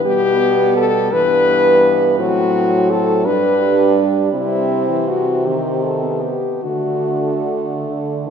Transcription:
0, 0, Header, 1, 5, 480
1, 0, Start_track
1, 0, Tempo, 712589
1, 39, Time_signature, 6, 3, 24, 8
1, 2439, Tempo, 734394
1, 3399, Tempo, 777202
1, 4359, Tempo, 817439
1, 5332, End_track
2, 0, Start_track
2, 0, Title_t, "French horn"
2, 0, Program_c, 0, 60
2, 33, Note_on_c, 0, 67, 120
2, 509, Note_off_c, 0, 67, 0
2, 520, Note_on_c, 0, 69, 121
2, 757, Note_on_c, 0, 71, 127
2, 767, Note_off_c, 0, 69, 0
2, 1472, Note_off_c, 0, 71, 0
2, 1476, Note_on_c, 0, 66, 110
2, 1956, Note_on_c, 0, 69, 118
2, 1966, Note_off_c, 0, 66, 0
2, 2193, Note_on_c, 0, 71, 112
2, 2203, Note_off_c, 0, 69, 0
2, 2723, Note_off_c, 0, 71, 0
2, 2898, Note_on_c, 0, 64, 97
2, 3392, Note_on_c, 0, 66, 95
2, 3402, Note_off_c, 0, 64, 0
2, 3630, Note_on_c, 0, 67, 90
2, 3639, Note_off_c, 0, 66, 0
2, 3862, Note_on_c, 0, 69, 91
2, 3871, Note_off_c, 0, 67, 0
2, 4098, Note_on_c, 0, 67, 83
2, 4107, Note_off_c, 0, 69, 0
2, 4349, Note_on_c, 0, 66, 85
2, 4358, Note_off_c, 0, 67, 0
2, 5078, Note_off_c, 0, 66, 0
2, 5332, End_track
3, 0, Start_track
3, 0, Title_t, "French horn"
3, 0, Program_c, 1, 60
3, 36, Note_on_c, 1, 59, 94
3, 730, Note_off_c, 1, 59, 0
3, 753, Note_on_c, 1, 59, 86
3, 1477, Note_on_c, 1, 60, 81
3, 1487, Note_off_c, 1, 59, 0
3, 2192, Note_on_c, 1, 62, 86
3, 2202, Note_off_c, 1, 60, 0
3, 2895, Note_off_c, 1, 62, 0
3, 2899, Note_on_c, 1, 60, 84
3, 3533, Note_off_c, 1, 60, 0
3, 3637, Note_on_c, 1, 60, 77
3, 3980, Note_on_c, 1, 59, 66
3, 3989, Note_off_c, 1, 60, 0
3, 4355, Note_off_c, 1, 59, 0
3, 4358, Note_on_c, 1, 57, 71
3, 5332, Note_off_c, 1, 57, 0
3, 5332, End_track
4, 0, Start_track
4, 0, Title_t, "French horn"
4, 0, Program_c, 2, 60
4, 36, Note_on_c, 2, 55, 77
4, 763, Note_on_c, 2, 52, 80
4, 773, Note_off_c, 2, 55, 0
4, 1489, Note_on_c, 2, 54, 78
4, 1499, Note_off_c, 2, 52, 0
4, 2210, Note_on_c, 2, 55, 76
4, 2220, Note_off_c, 2, 54, 0
4, 2907, Note_off_c, 2, 55, 0
4, 2911, Note_on_c, 2, 55, 70
4, 3271, Note_on_c, 2, 52, 71
4, 3280, Note_off_c, 2, 55, 0
4, 3626, Note_on_c, 2, 51, 72
4, 3635, Note_off_c, 2, 52, 0
4, 4244, Note_off_c, 2, 51, 0
4, 4349, Note_on_c, 2, 50, 65
4, 5017, Note_off_c, 2, 50, 0
4, 5079, Note_on_c, 2, 50, 63
4, 5311, Note_on_c, 2, 52, 68
4, 5320, Note_off_c, 2, 50, 0
4, 5332, Note_off_c, 2, 52, 0
4, 5332, End_track
5, 0, Start_track
5, 0, Title_t, "French horn"
5, 0, Program_c, 3, 60
5, 41, Note_on_c, 3, 47, 81
5, 732, Note_off_c, 3, 47, 0
5, 755, Note_on_c, 3, 43, 94
5, 1477, Note_on_c, 3, 45, 84
5, 1487, Note_off_c, 3, 43, 0
5, 2196, Note_on_c, 3, 43, 96
5, 2206, Note_off_c, 3, 45, 0
5, 2898, Note_off_c, 3, 43, 0
5, 2902, Note_on_c, 3, 48, 77
5, 4250, Note_off_c, 3, 48, 0
5, 4355, Note_on_c, 3, 50, 70
5, 5332, Note_off_c, 3, 50, 0
5, 5332, End_track
0, 0, End_of_file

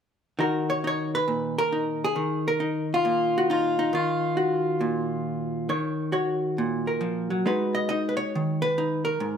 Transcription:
0, 0, Header, 1, 2, 480
1, 0, Start_track
1, 0, Key_signature, -6, "minor"
1, 0, Tempo, 441501
1, 411, Time_signature, 4, 2, 24, 8
1, 10189, End_track
2, 0, Start_track
2, 0, Title_t, "Hollow-body jazz guitar"
2, 0, Program_c, 0, 26
2, 420, Note_on_c, 0, 51, 65
2, 430, Note_on_c, 0, 63, 45
2, 437, Note_on_c, 0, 66, 38
2, 440, Note_on_c, 0, 70, 69
2, 738, Note_off_c, 0, 70, 0
2, 758, Note_on_c, 0, 73, 86
2, 907, Note_off_c, 0, 73, 0
2, 909, Note_off_c, 0, 63, 0
2, 914, Note_on_c, 0, 63, 57
2, 950, Note_on_c, 0, 73, 95
2, 1236, Note_off_c, 0, 73, 0
2, 1249, Note_on_c, 0, 71, 94
2, 1388, Note_on_c, 0, 46, 62
2, 1708, Note_off_c, 0, 71, 0
2, 1723, Note_on_c, 0, 70, 95
2, 1871, Note_off_c, 0, 63, 0
2, 1875, Note_on_c, 0, 63, 58
2, 2219, Note_off_c, 0, 66, 0
2, 2223, Note_on_c, 0, 68, 88
2, 2320, Note_off_c, 0, 46, 0
2, 2340, Note_off_c, 0, 51, 0
2, 2345, Note_on_c, 0, 51, 68
2, 2665, Note_off_c, 0, 70, 0
2, 2675, Note_off_c, 0, 68, 0
2, 2693, Note_on_c, 0, 70, 94
2, 2823, Note_off_c, 0, 63, 0
2, 2827, Note_on_c, 0, 63, 54
2, 3196, Note_on_c, 0, 65, 84
2, 3315, Note_on_c, 0, 46, 63
2, 3630, Note_off_c, 0, 70, 0
2, 3667, Note_off_c, 0, 63, 0
2, 3672, Note_on_c, 0, 66, 81
2, 3799, Note_off_c, 0, 66, 0
2, 3802, Note_off_c, 0, 65, 0
2, 3803, Note_on_c, 0, 63, 62
2, 3815, Note_on_c, 0, 65, 80
2, 4115, Note_off_c, 0, 63, 0
2, 4119, Note_on_c, 0, 63, 76
2, 4263, Note_off_c, 0, 46, 0
2, 4267, Note_off_c, 0, 51, 0
2, 4271, Note_on_c, 0, 51, 66
2, 4273, Note_off_c, 0, 65, 0
2, 4292, Note_on_c, 0, 65, 78
2, 4745, Note_off_c, 0, 63, 0
2, 4749, Note_on_c, 0, 66, 61
2, 5225, Note_on_c, 0, 46, 60
2, 6175, Note_off_c, 0, 51, 0
2, 6177, Note_off_c, 0, 46, 0
2, 6188, Note_on_c, 0, 51, 65
2, 6189, Note_off_c, 0, 65, 0
2, 6193, Note_on_c, 0, 73, 60
2, 6651, Note_off_c, 0, 73, 0
2, 6653, Note_off_c, 0, 66, 0
2, 6657, Note_on_c, 0, 66, 56
2, 6664, Note_on_c, 0, 73, 60
2, 7157, Note_on_c, 0, 46, 61
2, 7473, Note_on_c, 0, 70, 56
2, 7613, Note_off_c, 0, 51, 0
2, 7618, Note_on_c, 0, 53, 55
2, 7930, Note_off_c, 0, 53, 0
2, 7941, Note_on_c, 0, 54, 55
2, 8077, Note_off_c, 0, 73, 0
2, 8097, Note_off_c, 0, 54, 0
2, 8102, Note_off_c, 0, 46, 0
2, 8106, Note_on_c, 0, 56, 64
2, 8113, Note_on_c, 0, 63, 44
2, 8115, Note_off_c, 0, 70, 0
2, 8116, Note_off_c, 0, 66, 0
2, 8119, Note_on_c, 0, 71, 76
2, 8121, Note_on_c, 0, 66, 44
2, 8421, Note_on_c, 0, 75, 90
2, 8563, Note_off_c, 0, 75, 0
2, 8576, Note_on_c, 0, 75, 90
2, 8586, Note_off_c, 0, 63, 0
2, 8591, Note_on_c, 0, 63, 58
2, 8780, Note_off_c, 0, 71, 0
2, 8793, Note_on_c, 0, 71, 67
2, 8875, Note_off_c, 0, 71, 0
2, 8880, Note_on_c, 0, 73, 92
2, 9083, Note_on_c, 0, 51, 65
2, 9269, Note_off_c, 0, 75, 0
2, 9363, Note_off_c, 0, 73, 0
2, 9371, Note_on_c, 0, 71, 99
2, 9540, Note_off_c, 0, 63, 0
2, 9545, Note_on_c, 0, 63, 64
2, 9832, Note_off_c, 0, 71, 0
2, 9836, Note_on_c, 0, 70, 85
2, 10001, Note_off_c, 0, 51, 0
2, 10001, Note_off_c, 0, 56, 0
2, 10006, Note_on_c, 0, 44, 68
2, 10038, Note_off_c, 0, 66, 0
2, 10189, Note_off_c, 0, 44, 0
2, 10189, Note_off_c, 0, 63, 0
2, 10189, Note_off_c, 0, 70, 0
2, 10189, End_track
0, 0, End_of_file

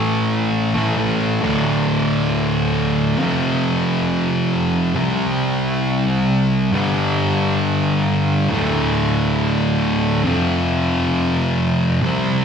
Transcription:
0, 0, Header, 1, 2, 480
1, 0, Start_track
1, 0, Tempo, 500000
1, 11950, End_track
2, 0, Start_track
2, 0, Title_t, "Distorted electric guitar"
2, 0, Program_c, 0, 30
2, 0, Note_on_c, 0, 45, 86
2, 0, Note_on_c, 0, 52, 83
2, 0, Note_on_c, 0, 57, 99
2, 694, Note_off_c, 0, 45, 0
2, 701, Note_off_c, 0, 57, 0
2, 702, Note_off_c, 0, 52, 0
2, 713, Note_on_c, 0, 57, 80
2, 729, Note_on_c, 0, 52, 74
2, 741, Note_on_c, 0, 45, 69
2, 911, Note_off_c, 0, 57, 0
2, 915, Note_off_c, 0, 45, 0
2, 919, Note_off_c, 0, 52, 0
2, 926, Note_on_c, 0, 45, 79
2, 938, Note_on_c, 0, 52, 71
2, 952, Note_on_c, 0, 57, 76
2, 1337, Note_off_c, 0, 45, 0
2, 1343, Note_off_c, 0, 52, 0
2, 1350, Note_off_c, 0, 57, 0
2, 1358, Note_on_c, 0, 38, 80
2, 1370, Note_on_c, 0, 45, 84
2, 1383, Note_on_c, 0, 50, 99
2, 3043, Note_off_c, 0, 38, 0
2, 3047, Note_on_c, 0, 41, 87
2, 3050, Note_off_c, 0, 45, 0
2, 3056, Note_off_c, 0, 50, 0
2, 3062, Note_on_c, 0, 48, 89
2, 3075, Note_on_c, 0, 53, 88
2, 4739, Note_off_c, 0, 41, 0
2, 4740, Note_off_c, 0, 48, 0
2, 4752, Note_on_c, 0, 48, 81
2, 4753, Note_off_c, 0, 53, 0
2, 4764, Note_on_c, 0, 55, 87
2, 4773, Note_on_c, 0, 60, 92
2, 6441, Note_off_c, 0, 48, 0
2, 6447, Note_off_c, 0, 55, 0
2, 6452, Note_off_c, 0, 60, 0
2, 6457, Note_on_c, 0, 43, 90
2, 6474, Note_on_c, 0, 50, 80
2, 6484, Note_on_c, 0, 55, 89
2, 8142, Note_off_c, 0, 43, 0
2, 8151, Note_off_c, 0, 50, 0
2, 8156, Note_off_c, 0, 55, 0
2, 8158, Note_on_c, 0, 38, 83
2, 8169, Note_on_c, 0, 45, 88
2, 8186, Note_on_c, 0, 50, 90
2, 9826, Note_off_c, 0, 38, 0
2, 9829, Note_on_c, 0, 41, 93
2, 9839, Note_off_c, 0, 45, 0
2, 9843, Note_on_c, 0, 48, 87
2, 9854, Note_off_c, 0, 50, 0
2, 9858, Note_on_c, 0, 53, 93
2, 11524, Note_off_c, 0, 41, 0
2, 11531, Note_off_c, 0, 48, 0
2, 11539, Note_off_c, 0, 53, 0
2, 11542, Note_on_c, 0, 48, 85
2, 11561, Note_on_c, 0, 55, 97
2, 11577, Note_on_c, 0, 60, 97
2, 11950, Note_off_c, 0, 48, 0
2, 11950, Note_off_c, 0, 55, 0
2, 11950, Note_off_c, 0, 60, 0
2, 11950, End_track
0, 0, End_of_file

